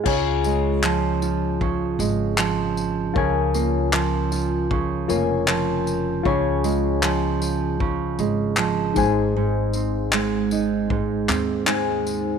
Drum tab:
CC |x-------|--------|--------|--------|
TB |-x-x-x-x|-x-x-x-x|-x-x-x-x|-x-x-x-x|
CP |--x---x-|--x---x-|--x---x-|--x--xx-|
BD |o---o---|o---o---|o---o--o|----o---|